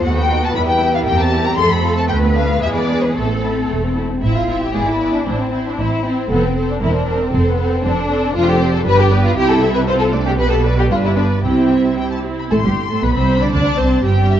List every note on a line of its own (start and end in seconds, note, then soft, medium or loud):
0.04 0.46 D#2 medium
0.04 0.52 A3 soft
0.04 0.16 A3 soft
0.04 1.03 B3 soft
0.04 0.54 F#4 medium
0.04 1.03 B4 medium
0.04 0.17 F#5 medium
0.17 0.30 B3 soft
0.17 0.42 G5 medium
0.30 0.43 D#4 soft
0.42 0.55 F#4 soft
0.42 0.56 A5 medium
0.54 0.98 E2 medium
0.54 0.67 G3 soft
0.54 1.58 G3 soft
0.54 1.06 E4 medium
0.54 0.61 B5 medium
0.68 0.81 B3 soft
0.68 0.93 G5 medium
0.80 0.94 E4 soft
0.94 1.07 B3 soft
0.94 1.00 F5 medium
1.06 1.50 E2 medium
1.06 1.18 A#3 medium
1.06 2.09 C4 soft
1.06 1.59 G4 medium
1.06 1.58 A#4 soft
1.06 1.19 G5 medium
1.19 1.33 C4 soft
1.19 1.45 A5 medium
1.33 1.46 E4 soft
1.46 1.59 G4 soft
1.46 1.59 A#5 medium
1.58 2.01 F2 medium
1.58 2.62 A3 medium
1.58 1.70 A3 soft
1.58 2.10 A4 medium
1.58 1.71 C6 medium
1.71 1.84 C4 soft
1.71 1.97 B5 medium
1.84 1.97 F4 soft
1.97 2.10 C4 soft
1.97 2.03 A5 medium
2.09 2.53 D2 medium
2.09 2.22 A3 medium
2.09 3.14 B3 soft
2.09 2.61 B4 medium
2.09 3.14 B4 medium
2.09 2.17 G5 medium
2.22 2.35 B3 soft
2.35 2.49 D4 soft
2.35 2.61 F5 medium
2.48 2.62 F4 soft
2.62 3.07 E2 soft
2.62 3.16 G#3 soft
2.62 2.75 G#3 soft
2.62 3.15 G#4 medium
2.62 2.67 E5 medium
2.75 2.89 B3 soft
2.75 3.01 D5 medium
2.89 3.02 D4 soft
3.03 3.16 E4 soft
3.03 3.16 B4 medium
3.15 3.61 A1 soft
3.15 4.01 A3 soft
3.15 3.29 A3 soft
3.15 4.01 C4 soft
3.15 3.96 A4 soft
3.15 3.69 A4 medium
3.15 4.01 A4 soft
3.30 3.43 C4 soft
3.43 3.56 E4 soft
3.56 3.70 C4 soft
3.69 4.14 E1 soft
3.69 3.83 A3 soft
3.83 3.96 C4 soft
3.96 4.09 E4 soft
4.09 4.22 C4 soft
4.22 4.67 A1 soft
4.22 4.66 A2 medium
4.22 4.47 C4 soft
4.22 4.34 E4 medium
4.22 4.47 E4 soft
4.22 4.48 E5 soft
4.35 4.61 F4 medium
4.49 4.74 C4 soft
4.49 4.72 E4 soft
4.49 4.75 E5 soft
4.62 4.75 G4 medium
4.73 5.18 G#1 soft
4.73 5.18 G#2 soft
4.73 4.99 B3 soft
4.73 4.99 E4 soft
4.73 4.87 G#4 medium
4.73 5.00 D5 soft
4.87 5.13 E4 medium
5.00 5.26 B3 soft
5.00 5.25 E4 soft
5.00 5.26 D5 soft
5.14 5.40 D4 medium
5.26 5.70 A1 medium
5.26 5.70 A2 medium
5.26 5.51 C4 soft
5.26 5.51 E4 soft
5.26 5.52 C5 soft
5.39 5.65 C4 medium
5.52 5.77 C4 soft
5.52 5.77 E4 soft
5.52 5.78 C5 soft
5.67 5.79 D4 medium
5.78 6.22 A1 soft
5.78 6.22 A2 medium
5.78 6.03 C4 soft
5.78 6.03 E4 soft
5.78 6.05 E4 medium
5.78 6.04 C5 soft
6.04 6.29 C4 soft
6.04 6.31 C4 medium
6.04 6.30 E4 soft
6.04 6.30 C5 soft
6.30 6.74 F1 medium
6.30 6.73 F2 medium
6.30 6.43 B3 medium
6.30 6.55 C4 soft
6.30 6.55 A4 soft
6.30 6.55 C5 soft
6.45 6.69 C4 medium
6.56 6.80 C4 soft
6.56 6.81 A4 soft
6.56 6.81 C5 soft
6.70 6.75 D4 medium
6.81 7.24 E1 medium
6.81 7.24 E2 medium
6.81 7.06 C4 soft
6.81 6.94 E4 medium
6.81 7.06 A#4 soft
6.81 7.07 C5 soft
6.95 7.20 D4 medium
7.07 7.31 C4 soft
7.07 7.32 A#4 soft
7.07 7.32 C5 soft
7.21 7.46 C4 medium
7.32 7.75 F1 medium
7.32 7.75 F2 medium
7.32 7.58 C4 soft
7.32 7.58 A4 soft
7.32 7.57 C5 soft
7.46 7.71 B3 medium
7.59 7.84 C4 soft
7.59 7.84 A4 soft
7.59 7.83 C5 soft
7.72 7.84 C4 medium
7.84 8.26 F1 medium
7.84 8.27 F2 medium
7.84 8.09 C4 soft
7.84 8.35 D4 medium
7.84 8.09 A4 soft
7.84 8.08 C5 soft
8.09 8.35 C4 soft
8.09 8.35 A4 soft
8.09 8.34 C5 soft
8.34 8.82 F1 medium
8.34 8.82 F2 medium
8.34 8.59 D4 soft
8.34 8.48 F4 medium
8.34 8.59 A4 soft
8.34 8.58 C5 soft
8.48 8.73 G4 medium
8.60 8.86 C4 soft
8.60 8.86 C5 soft
8.60 8.85 D5 soft
8.75 8.80 A4 medium
8.85 9.36 G1 medium
8.85 9.36 G2 medium
8.85 9.09 D4 soft
8.85 9.09 G4 soft
8.85 9.09 B4 medium
8.85 8.98 B4 medium
8.99 9.24 G4 medium
9.11 9.37 B3 medium
9.11 9.37 B4 medium
9.11 9.36 D5 soft
9.24 9.37 F4 medium
9.36 10.37 C2 medium
9.36 10.37 C3 medium
9.36 9.60 E4 soft
9.36 9.49 G4 medium
9.36 9.61 G4 soft
9.36 9.61 G5 medium
9.49 9.75 A4 medium
9.62 9.86 C4 soft
9.62 9.88 E4 soft
9.62 9.88 E5 soft
9.75 9.80 B4 medium
9.87 10.11 C4 soft
9.87 10.12 F4 soft
9.87 9.93 C5 medium
9.87 10.11 C5 medium
9.99 10.07 A4 medium
10.13 10.39 A3 medium
10.13 10.39 D4 soft
10.13 10.39 D5 soft
10.27 10.32 G4 medium
10.38 10.91 B1 medium
10.38 10.91 B2 medium
10.38 10.63 B3 soft
10.38 10.63 G4 soft
10.38 10.51 B4 medium
10.38 10.64 B4 soft
10.51 10.59 A4 medium
10.65 10.91 G3 soft
10.65 10.91 B4 soft
10.65 10.91 D5 soft
10.79 10.84 G4 medium
10.91 11.44 G1 medium
10.91 11.44 G2 medium
10.91 11.16 D4 soft
10.91 10.96 F4 medium
10.91 11.15 G4 soft
10.91 11.16 B4 soft
11.05 11.10 E4 medium
11.16 11.45 B3 soft
11.16 11.24 D4 medium
11.16 11.45 B4 soft
11.16 11.44 D5 soft
11.44 12.31 C2 soft
11.44 12.31 C3 soft
11.44 11.97 C4 medium
11.44 11.70 E4 soft
11.44 11.70 G4 soft
11.44 11.69 G5 soft
11.72 11.99 C4 soft
11.72 11.97 E4 soft
11.72 11.99 E5 soft
11.98 12.23 E4 soft
11.98 12.25 G4 soft
11.98 12.10 G5 soft
12.11 12.19 A5 soft
12.24 12.51 C4 soft
12.24 12.51 E4 soft
12.39 12.45 B5 soft
12.51 12.57 A1 medium
12.51 12.57 A2 medium
12.51 12.63 A3 medium
12.51 12.56 A4 medium
12.51 13.00 C6 medium
12.64 12.72 G1 soft
12.64 12.73 G2 soft
12.64 12.72 G3 soft
12.64 12.90 G4 soft
12.90 13.03 A2 soft
12.90 13.03 A3 medium
12.90 13.04 A4 medium
13.03 13.09 B1 medium
13.03 13.08 B2 medium
13.03 13.16 B3 medium
13.03 13.09 B4 medium
13.03 13.55 B5 medium
13.15 13.41 C2 medium
13.15 13.41 C3 medium
13.15 13.42 C4 medium
13.15 13.41 C5 medium
13.41 13.53 D3 medium
13.41 13.52 D4 medium
13.41 13.53 D5 medium
13.53 13.62 D2 medium
13.53 13.62 D3 medium
13.53 13.79 D4 medium
13.53 13.79 D5 medium
13.53 14.04 A5 medium
13.79 14.05 C2 medium
13.79 14.05 C3 soft
13.79 14.05 C4 medium
13.79 14.05 C5 medium
14.04 14.40 G1 medium
14.04 14.40 G2 medium
14.04 14.40 G3 medium
14.04 14.40 G4 medium
14.04 14.31 G5 medium
14.31 14.40 E5 soft